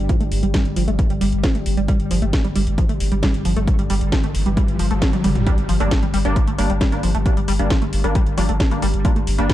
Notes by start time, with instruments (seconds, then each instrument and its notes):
Already playing: ambient pad G2 G3
0.09 synth arpeggio sound F3, kick, closed hi-hat
0.21 sub bass G1, synth arpeggio sound A3, closed hi-hat
0.32 sub bass G1, open hi-hat
0.43 sub bass G1, synth arpeggio sound G3, closed hi-hat
0.54 synth arpeggio sound G3, kick, snare, closed hi-hat
0.65 sub bass G1, closed hi-hat
0.76 sub bass G1, synth arpeggio sound F3, open hi-hat
0.88 sub bass G1, synth arpeggio sound A3, closed hi-hat
0.99 kick, closed hi-hat
1.10 sub bass G1, synth arpeggio sound G3, closed hi-hat
1.21 sub bass G1, synth arpeggio sound G3, open hi-hat
1.32 sub bass G1, closed hi-hat
1.44 synth arpeggio sound F3, kick, snare, closed hi-hat
1.55 sub bass G1, synth arpeggio sound A3, closed hi-hat
1.66 sub bass G1, open hi-hat
1.77 sub bass G1, synth arpeggio sound G3, closed hi-hat
1.88 synth arpeggio sound G3, kick, closed hi-hat, riser
2.00 sub bass G1, closed hi-hat
2.11 sub bass G1, synth arpeggio sound F3, open hi-hat
2.22 sub bass G1, synth arpeggio sound A3, closed hi-hat
2.33 kick, snare, closed hi-hat
2.44 sub bass G1, synth arpeggio sound G3, closed hi-hat
2.56 sub bass G1, synth arpeggio sound G3, open hi-hat
2.67 sub bass G1, closed hi-hat
2.78 synth arpeggio sound F3, kick, closed hi-hat
2.89 sub bass G1, synth arpeggio sound A3, closed hi-hat
3.00 sub bass G1, open hi-hat
3.12 sub bass G1, synth arpeggio sound G3, closed hi-hat
3.23 synth arpeggio sound G3, kick, snare, closed hi-hat
3.34 sub bass G1, closed hi-hat
3.45 sub bass G1, synth arpeggio sound F3, open hi-hat
3.56 sub bass G1, synth arpeggio sound A3, closed hi-hat
3.68 kick, closed hi-hat
3.79 sub bass G1, synth arpeggio sound G3, closed hi-hat
3.90 sub bass G1, synth arpeggio sound G3, open hi-hat
4.01 sub bass G1, closed hi-hat
4.12 synth arpeggio sound F3, kick, snare, closed hi-hat
4.24 sub bass G1, synth arpeggio sound A3, closed hi-hat
4.35 sub bass G1, open hi-hat
4.46 sub bass G1, synth arpeggio sound G3, closed hi-hat
4.57 synth arpeggio sound G3, kick, closed hi-hat
4.68 sub bass G1, closed hi-hat
4.79 sub bass G1, synth arpeggio sound F3, open hi-hat
4.91 sub bass G1, synth arpeggio sound A3, closed hi-hat
5.02 kick, snare, closed hi-hat, high tom
5.13 sub bass G1, synth arpeggio sound G3, closed hi-hat, high tom
5.24 sub bass G1, synth arpeggio sound G3, open hi-hat, mid tom
5.35 sub bass G1, closed hi-hat, mid tom
5.47 ambient pad G2 G3, synth stab G3 A#3 D4, synth arpeggio sound G3, kick, closed hi-hat, impact
5.58 sub bass G1, closed hi-hat
5.69 sub bass G1, synth arpeggio sound F3, open hi-hat
5.80 sub bass G1, synth stab G3 A#3 D4, synth arpeggio sound A3, closed hi-hat
5.91 kick, snare, closed hi-hat
6.03 sub bass G1, synth arpeggio sound G3, closed hi-hat
6.14 sub bass G1, synth arpeggio sound G3, open hi-hat
6.25 sub bass G1, synth stab G3 A#3 D4, closed hi-hat
6.36 synth arpeggio sound F3, kick, closed hi-hat
6.47 sub bass G1, synth arpeggio sound A3, closed hi-hat
6.59 sub bass G1, synth stab G3 A#3 D4, open hi-hat
6.70 sub bass G1, synth arpeggio sound G3, closed hi-hat
6.81 synth arpeggio sound G3, kick, snare, closed hi-hat
6.92 sub bass G1, synth stab G3 A#3 D4, closed hi-hat
7.03 sub bass G1, synth arpeggio sound F3, open hi-hat
7.15 sub bass G1, synth arpeggio sound A3, closed hi-hat
7.26 synth stab G3 A#3 D4, kick, closed hi-hat
7.37 sub bass G1, synth arpeggio sound G3, closed hi-hat
7.48 sub bass G1, synth arpeggio sound G3, open hi-hat
7.59 sub bass G1, synth stab G3 A#3 D4, closed hi-hat
7.70 synth arpeggio sound F3, kick, snare, closed hi-hat
7.82 sub bass G1, synth arpeggio sound A3, closed hi-hat
7.93 sub bass G1, open hi-hat
8.04 sub bass G1, synth arpeggio sound G3, synth stab G3 A#3 D4, closed hi-hat
8.15 synth arpeggio sound G3, kick, closed hi-hat
8.27 sub bass G1, closed hi-hat
8.38 sub bass G1, synth arpeggio sound F3, synth stab G3 A#3 D4, open hi-hat
8.49 sub bass G1, synth arpeggio sound A3, closed hi-hat
8.60 kick, snare, closed hi-hat
8.71 sub bass G1, synth arpeggio sound G3, synth stab G3 A#3 D4, closed hi-hat
8.82 sub bass G1, synth arpeggio sound G3, open hi-hat
8.94 sub bass G1, closed hi-hat
9.05 synth arpeggio sound F3, synth stab G3 A#3 D4, kick, closed hi-hat
9.16 sub bass G1, synth arpeggio sound A3, closed hi-hat
9.27 sub bass G1, open hi-hat
9.38 sub bass G1, synth arpeggio sound G3, synth stab G3 A#3 D4, closed hi-hat
9.49 synth arpeggio sound G3, kick, snare, closed hi-hat